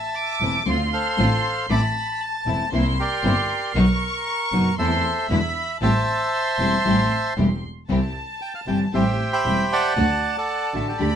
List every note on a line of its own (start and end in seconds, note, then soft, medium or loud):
0.00 0.63 E5 medium
0.00 0.11 A5 medium
0.00 0.63 A5 medium
0.14 0.66 D6 medium
0.41 0.62 E1 medium
0.41 0.57 E3 medium
0.41 0.57 A3 medium
0.41 0.62 A3 soft
0.41 0.62 C4 soft
0.41 0.58 C4 medium
0.41 0.63 E4 soft
0.41 0.58 E4 medium
0.66 0.88 D2 medium
0.66 0.75 D3 medium
0.66 0.75 A3 medium
0.66 0.75 C4 medium
0.66 0.88 C4 medium
0.66 0.88 D4 medium
0.66 0.75 F4 medium
0.66 0.88 F4 medium
0.66 1.70 C6 medium
0.93 1.66 A4 medium
0.93 1.66 C5 soft
0.93 1.66 F5 medium
1.17 1.40 A1 medium
1.17 1.26 D3 medium
1.17 1.27 A3 medium
1.17 1.39 C4 medium
1.17 1.27 C4 medium
1.17 1.39 D4 medium
1.17 1.40 F4 medium
1.17 1.27 F4 medium
1.69 1.91 A1 medium
1.69 1.78 E3 medium
1.69 1.91 A3 medium
1.69 1.78 A3 medium
1.69 1.91 C4 medium
1.69 1.78 C4 medium
1.69 1.91 E4 medium
1.69 1.79 E4 medium
1.69 2.69 A5 medium
1.69 2.21 B5 medium
1.69 1.82 D6 medium
2.21 2.46 A5 medium
2.46 2.68 E1 medium
2.46 2.63 E3 medium
2.46 2.68 A3 soft
2.46 2.63 A3 medium
2.46 2.68 C4 soft
2.46 2.64 C4 medium
2.46 2.68 E4 medium
2.46 2.64 E4 medium
2.46 2.71 A5 medium
2.72 2.94 C2 medium
2.72 2.81 C3 medium
2.72 2.81 E3 medium
2.72 2.81 A#3 medium
2.72 2.94 A#3 medium
2.72 2.81 C4 medium
2.72 2.94 C4 medium
2.72 2.94 E4 medium
2.72 2.82 E4 medium
2.72 3.76 C6 medium
3.00 3.72 G4 medium
3.00 4.75 A#4 medium
3.00 3.73 D5 medium
3.23 3.45 G1 medium
3.23 3.32 C3 medium
3.23 3.33 E3 medium
3.23 3.45 A#3 medium
3.23 3.33 A#3 medium
3.23 3.45 C4 medium
3.23 3.33 C4 medium
3.23 3.46 E4 medium
3.23 3.33 E4 medium
3.75 3.97 B1 medium
3.75 3.84 B2 medium
3.75 3.97 F#3 medium
3.75 3.84 F#3 medium
3.75 3.97 B3 medium
3.75 3.85 B3 medium
3.75 3.97 D#4 medium
3.75 3.85 D#4 medium
3.75 3.85 F#4 medium
3.75 4.78 C#6 medium
4.52 4.74 F#1 soft
4.52 4.69 B2 medium
4.52 4.74 F#3 soft
4.52 4.69 F#3 medium
4.52 4.74 B3 soft
4.52 4.70 B3 medium
4.52 4.74 D#4 soft
4.52 4.70 D#4 medium
4.52 4.70 F#4 medium
4.78 5.00 E2 medium
4.78 4.87 E3 medium
4.78 5.00 A3 medium
4.78 4.87 A3 medium
4.78 5.00 C4 medium
4.78 4.88 C4 medium
4.78 5.00 E4 medium
4.78 4.88 E4 medium
4.78 5.26 A4 medium
4.78 5.27 C5 medium
4.78 5.78 E5 medium
4.78 5.26 C6 medium
5.29 5.51 E2 medium
5.29 5.39 B2 medium
5.29 5.39 D3 medium
5.29 5.52 G#3 medium
5.29 5.39 G#3 medium
5.29 5.40 B3 medium
5.29 5.52 D4 soft
5.29 5.52 E4 medium
5.29 5.39 E4 medium
5.29 5.82 B5 medium
5.81 6.03 A1 medium
5.81 5.90 E3 medium
5.81 5.90 G3 medium
5.81 6.03 A3 medium
5.81 6.03 C4 medium
5.81 5.91 C4 medium
5.81 5.91 E4 medium
5.81 6.03 G4 medium
5.81 7.34 C5 medium
5.81 7.34 E5 medium
5.81 6.29 A5 medium
5.81 7.34 A5 medium
6.32 7.63 C6 medium
6.59 6.81 E1 medium
6.59 6.76 E3 medium
6.59 6.76 G3 medium
6.59 6.81 A3 soft
6.59 6.81 C4 soft
6.59 6.76 C4 medium
6.59 6.77 E4 medium
6.59 6.81 G4 soft
6.85 7.07 A1 medium
6.85 6.94 E3 medium
6.85 6.94 G3 medium
6.85 7.07 A3 medium
6.85 7.07 C4 medium
6.85 6.94 C4 medium
6.85 6.95 E4 medium
6.85 7.07 G4 medium
7.37 7.59 E1 medium
7.37 7.46 E3 medium
7.37 7.46 G3 medium
7.37 7.59 A3 medium
7.37 7.59 C4 medium
7.37 7.46 C4 medium
7.37 7.47 E4 medium
7.37 7.59 G4 medium
7.89 8.11 C2 medium
7.89 7.98 C3 medium
7.89 7.98 E3 medium
7.89 7.98 G3 medium
7.89 8.11 C4 medium
7.89 7.98 C4 medium
7.89 8.11 E4 medium
7.89 7.99 E4 medium
7.89 8.11 G4 medium
7.89 8.89 A5 medium
8.42 8.54 G5 medium
8.55 8.61 F5 medium
8.67 8.89 G1 medium
8.67 8.84 C3 medium
8.67 8.84 E3 medium
8.67 8.84 G3 medium
8.67 8.89 C4 soft
8.67 8.84 C4 medium
8.67 8.89 E4 soft
8.67 8.85 E4 medium
8.67 8.89 G4 soft
8.67 8.79 G5 medium
8.92 9.15 A1 medium
8.92 9.02 E3 medium
8.92 9.02 G3 medium
8.92 9.15 A3 medium
8.92 9.15 C4 medium
8.92 9.02 C4 medium
8.92 9.03 E4 medium
8.92 9.15 G4 medium
8.92 9.94 G4 medium
8.92 9.93 C5 medium
8.92 9.32 E5 medium
8.92 9.96 G5 medium
9.33 9.94 E5 medium
9.33 9.93 G5 medium
9.33 9.72 B5 medium
9.45 9.67 E1 soft
9.45 9.62 E3 medium
9.45 9.62 G3 medium
9.45 9.67 A3 soft
9.45 9.67 C4 soft
9.45 9.62 C4 medium
9.45 9.63 E4 medium
9.45 9.67 G4 soft
9.72 10.36 D5 medium
9.72 10.36 F#5 medium
9.72 10.38 A5 medium
9.96 10.18 D2 medium
9.96 10.06 D3 medium
9.96 10.18 A3 medium
9.96 10.06 A3 medium
9.96 10.18 D4 medium
9.96 10.06 D4 medium
9.96 10.18 F#4 medium
9.96 10.06 F#4 medium
9.96 11.00 A5 medium
10.38 10.87 A4 medium
10.38 10.87 D5 medium
10.38 10.73 F#5 medium
10.73 10.96 A1 soft
10.73 10.90 D3 medium
10.73 10.95 A3 soft
10.73 10.91 A3 medium
10.73 10.95 D4 soft
10.73 10.91 D4 medium
10.73 10.96 F#4 soft
10.73 10.91 F#4 medium
10.73 10.88 E5 medium
10.88 11.16 G4 soft
10.88 11.16 A4 soft
10.88 11.16 D5 medium
10.99 11.16 D2 medium
10.99 11.08 D3 medium
10.99 11.16 A3 medium
10.99 11.09 A3 medium
10.99 11.16 D4 medium
10.99 11.09 D4 medium
10.99 11.16 G4 medium
10.99 11.09 G4 medium
10.99 11.16 B5 medium